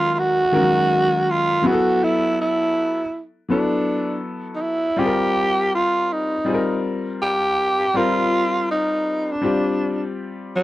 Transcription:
Already playing: grand piano D#3 F#3 G#3 C#4 A#4, tenor saxophone F4
0.13 tenor saxophone F4
0.19 tenor saxophone F#4
0.52 grand piano D#3 G#3 C#4 F4 A#4
0.61 grand piano F#3
1.30 tenor saxophone F4
1.62 grand piano F#3 B3 E4 G#4
1.67 tenor saxophone F#4
1.72 grand piano A4
2.04 tenor saxophone E4
2.41 tenor saxophone E4
3.49 grand piano F#3 B3 E4 A4, tenor saxophone D4
4.56 tenor saxophone D#4
4.62 tenor saxophone E4
4.96 grand piano G3 C4 F4 G#4, tenor saxophone G4
5.06 grand piano A#4
5.75 tenor saxophone F4
6.12 tenor saxophone D#4
6.45 grand piano G3 C4 F4 G#4
6.54 grand piano A#4
7.22 tenor saxophone G4
7.94 grand piano G3 C4 F4 A#4, tenor saxophone F4
8.71 tenor saxophone D#4
9.32 tenor saxophone D4
9.41 grand piano G3 C4 F4 G4
10.56 tenor saxophone F#3

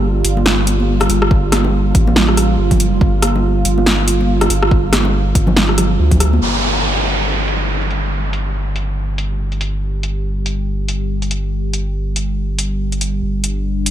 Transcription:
Already playing: sub bass G1, analog synth pad G3 F4
0.25 sub bass G1, closed hi-hat
0.37 high bongo, high conga
0.46 snare
0.67 closed hi-hat
0.80 high conga
1.00 cross-stick, closed hi-hat, high bongo
1.10 sub bass G1, closed hi-hat
1.22 cross-stick
1.31 kick
1.52 cross-stick, snare, closed hi-hat, high conga
1.64 high bongo
1.95 sub bass A1, kick, closed hi-hat
2.07 high bongo, high conga
2.16 snare
2.29 cross-stick
2.37 cross-stick, closed hi-hat
2.59 sub bass G1
2.71 kick, closed hi-hat, low conga
2.80 closed hi-hat
3.01 sub bass G1, kick
3.22 cross-stick, closed hi-hat, high conga
3.36 high bongo
3.65 sub bass G1, closed hi-hat
3.78 high bongo, high conga
3.86 snare
4.08 closed hi-hat
4.21 high conga
4.41 cross-stick, closed hi-hat, high bongo
4.50 sub bass G1, closed hi-hat
4.63 cross-stick
4.71 kick
4.93 cross-stick, snare, closed hi-hat, high conga
5.05 high bongo
5.35 sub bass G1, kick, closed hi-hat
5.47 high bongo, high conga, low conga
5.57 snare
5.69 cross-stick
5.78 cross-stick, closed hi-hat, low conga
5.99 sub bass D2
6.11 kick, closed hi-hat, low conga
6.20 cross-stick, closed hi-hat
6.33 high conga
6.42 sub bass G1, analog synth pad G3 G4, downlifter
6.63 closed hi-hat
7.05 closed hi-hat
7.48 closed hi-hat
7.82 closed hi-hat
7.91 closed hi-hat
8.33 closed hi-hat
8.76 closed hi-hat
9.18 closed hi-hat
9.52 closed hi-hat
9.61 closed hi-hat
10.03 closed hi-hat
10.46 closed hi-hat
10.88 closed hi-hat
11.22 closed hi-hat
11.31 closed hi-hat
11.73 closed hi-hat
12.16 closed hi-hat
12.59 closed hi-hat
12.92 closed hi-hat
13.01 closed hi-hat
13.22 sub bass G1, analog synth pad D4
13.44 closed hi-hat
13.86 closed hi-hat

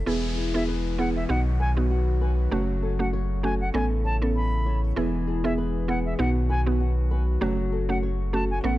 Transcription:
Already playing: nylon-string guitar E4 A4 C#5
0.06 sub bass E1, pipe organ E3 G#3 B3 G#4, nylon-string guitar E3, synth pluck B3 E4 G#4, downlifter
0.38 nylon-string guitar G#4
0.54 synth pluck B3 E4 G#4, flute E5
0.68 nylon-string guitar B4
0.98 synth pluck B3 E4 G#4, nylon-string guitar G#4, flute F#5
1.16 flute E5
1.29 sub bass B1, nylon-string guitar B2, pipe organ D#3 F#3 F#4, synth pluck B3 D#4 F#4, flute F#5
1.60 nylon-string guitar B4, flute G#5
1.77 synth pluck B3 D#4 F#4
1.91 nylon-string guitar F#4
2.21 nylon-string guitar B4
2.51 sub bass F#1, pipe organ C#3 A3 F#4, nylon-string guitar F#3, synth pluck A3 C#4 F#4
2.82 nylon-string guitar A4
2.99 synth pluck A3 C#4 F#4, flute F#5
3.13 nylon-string guitar C#5
3.43 synth pluck A3 C#4 F#4, nylon-string guitar A4, flute G#5
3.61 flute F#5
3.74 sub bass A1, pipe organ C#3 A3 B3 E4, nylon-string guitar A3, synth pluck B3 C#4 A4, flute G#5
4.05 nylon-string guitar C#5, flute A5
4.22 synth pluck B3 C#4 A4
4.36 nylon-string guitar A4, flute B5
4.66 nylon-string guitar C#5
4.96 sub bass E1, nylon-string guitar E3, pipe organ E3 G#3 G#4, synth pluck B3 E4 G#4
5.27 nylon-string guitar G#4
5.44 synth pluck B3 E4 G#4, flute E5
5.58 nylon-string guitar B4
5.88 synth pluck B3 E4 G#4, nylon-string guitar G#4, flute F#5
6.06 flute E5
6.19 sub bass B1, nylon-string guitar B2, pipe organ D#3 F#3 F#4, synth pluck B3 D#4 F#4, flute F#5
6.50 nylon-string guitar B4, flute G#5
6.66 synth pluck B3 D#4 F#4
6.80 nylon-string guitar F#4
7.11 nylon-string guitar B4
7.41 sub bass F#1, pipe organ C#3 A3, nylon-string guitar F#3, synth pluck A3 C#4 F#4
7.72 nylon-string guitar A4
7.89 synth pluck A3 C#4 F#4, flute F#5
8.03 nylon-string guitar C#5
8.33 synth pluck A3 C#4 F#4, nylon-string guitar A4, flute A5
8.51 flute G#5
8.64 sub bass A1, pipe organ C#3 B3 E4, nylon-string guitar A3, synth pluck B3 C#4 A4, flute F#5, reverse cymbal

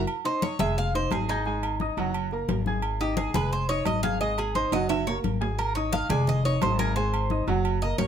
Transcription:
0.07 high conga, low agogo
0.24 grand piano D#4 D#5 D#6, cuban tres C5, high conga
0.42 cuban tres C#5, high conga, low timbale, low agogo
0.59 upright bass F1, grand piano G#3 G#4 G#5, cuban tres E5, high conga, low conga, low agogo
0.77 cuban tres F5, high conga
0.94 grand piano D#4 D#5 D#6, cuban tres C5, high conga
1.11 upright bass G#1, cuban tres G#4, high conga, low timbale, low agogo
1.29 cuban tres D#4, grand piano G#4 G#5 G#6, low agogo
1.45 grand piano G#3 G#4 G#5, high conga
1.63 high conga, low agogo
1.80 grand piano D#4 D#5 D#6, high conga, low timbale
1.97 upright bass F#1, grand piano F#3 F#4 F#5, high conga, low agogo
2.14 high conga, low agogo
2.31 grand piano A#3 A#4 A#5, high conga
2.48 upright bass G#1, high conga, low timbale, low agogo
2.66 grand piano G#4 G#5 G#6, high conga
2.82 high conga, low agogo
3.00 grand piano D#4 D#5 D#6, cuban tres G4, high conga
3.17 cuban tres G#4, high conga, low timbale, low agogo
3.34 upright bass F1, grand piano G#3 G#4 G#5, cuban tres B4, high conga, low conga, low agogo
3.52 cuban tres C5, high conga
3.69 grand piano D#4 D#5 D#6, cuban tres C#5, high conga
3.85 upright bass G#1, cuban tres D#5, high conga, low timbale, low agogo
4.03 grand piano G#4 G#5 G#6, cuban tres F5, high conga, low agogo
4.21 grand piano G#3 G#4 G#5, cuban tres D#5, high conga
4.38 cuban tres G#4, high conga, low agogo
4.55 grand piano D#4 D#5 D#6, cuban tres C5, high conga, low timbale
4.72 upright bass F#1, grand piano F#3 F#4 F#5, cuban tres D#5, high conga, high timbale, low agogo
4.89 cuban tres E5, high conga, high timbale, low agogo
5.07 grand piano A#3 A#4 A#5, cuban tres C#5, high conga, low timbale
5.24 upright bass G#1, high conga, low agogo
5.41 grand piano G#4 G#5 G#6, low timbale
5.59 cuban tres A#4, high conga, low agogo
5.75 grand piano D#4 D#5 D#6, cuban tres C#5, high conga
5.92 cuban tres F5, high conga, low timbale, low agogo
6.09 upright bass F1, grand piano G#3 G#4 G#5, cuban tres D5, high conga, low conga, low agogo
6.27 cuban tres D#5, high conga, low conga
6.45 grand piano D#4 D#5 D#6, cuban tres C#5, high conga
6.62 upright bass G#1, cuban tres C5, high conga, low timbale, low agogo
6.79 grand piano G#4 G#5 G#6, cuban tres A#4, high conga, low agogo
6.96 grand piano G#3 G#4 G#5, cuban tres C5
7.13 high conga, low agogo
7.30 grand piano D#4 D#5 D#6, high conga, low timbale
7.47 upright bass F#1, grand piano F#3 F#4 F#5, high conga, low agogo
7.64 high conga, low agogo
7.81 grand piano A#3 A#4 A#5, cuban tres D#5, high conga
7.98 upright bass G#1, cuban tres C#5, high conga, low timbale, low agogo

